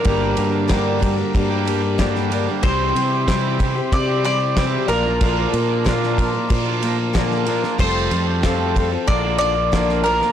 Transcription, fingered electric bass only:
X:1
M:4/4
L:1/8
Q:1/4=93
K:Bblyd
V:1 name="Fingered electric bass" clef=bass
G,,, G,,3 G,,4 | C,, C,3 C,3 B,,,- | B,,, B,,3 B,,4 | F,,, F,,3 B,,,4 |]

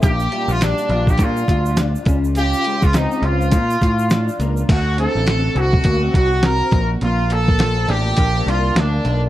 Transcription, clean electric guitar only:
X:1
M:4/4
L:1/16
Q:"Swing 16ths" 1/4=103
K:Bb
V:1 name="Clean electric guitar"
[B,,F]2 G,2 D2 F2 D2 F2 D2 _D,2 | [_D,F]2 _A,2 C2 F2 z2 F2 =D2 B,2 | D,2 C4 ^F2 B, C F2 C2 B,,2 | B,,2 B,2 F,2 D2 B,2 D2 B,2 D2 |]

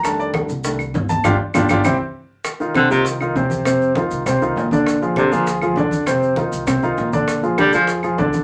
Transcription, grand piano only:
X:1
M:4/4
L:1/8
Q:1/4=199
K:Bb
V:1 name="Grand piano"
a d z4 z a | [DFG] z [DFG] [DFG] [C=EG] z3 | z [E,EF] [C,Cc] [E,EF]2 [E,EF] [C,Cc]2 | [C,Cc]2 [E,EF]2 [C,Cc] [E,EF]2 [D,Dd]- |
[D,Dd] [F,F_A] [D,Dd] [F,FA]2 [F,FA] [D,Dd]2 | [C,Cc]2 [E,EF]2 [C,Cc] [E,EF]2 [D,Dd]- | [D,Dd] [F,F_A] [D,Dd] [F,FA]2 [F,FA] [D,Dd]2 |]
V:2 name="Grand piano" clef=bass
[E,G,A,D]3 z [E,G,A,D] z3 | z8 | z8 | z8 |
z8 | z8 | z8 |]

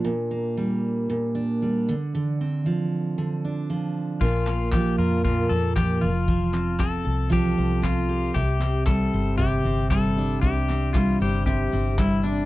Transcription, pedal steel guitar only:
X:1
M:4/4
L:1/8
Q:"Swing 16ths" 1/4=116
K:Cmix
V:1 name="Pedal steel guitar"
z8 | z8 | F2 G F F A G F- | F2 A2 G2 F2 |
G2 A2 G2 A2 | G2 F G G2 E D |]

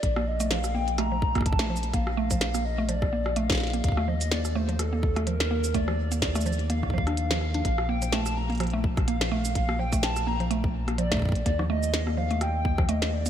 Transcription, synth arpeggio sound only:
X:1
M:4/4
L:1/16
Q:"Swing 16ths" 1/4=126
K:Bb
V:1 name="Synth arpeggio sound"
z B, z A, F, z B, z A, F, z B, z A, F, z | B, z A, F, z B, z A, F, z B, z A, F, z B, | z A, F, z B, z A, F, z B, z A, F, z B, z | A, F, z B, z A, F, z B, z F, D z F, z D |
z2 B, F, A, z2 B, F, A, z2 B, F, A, z | z B, F, A, z2 B, F, A, z2 B, F, A, z2 | B, F, A, z2 B, F, A, z2 B, F, A, z2 B, |]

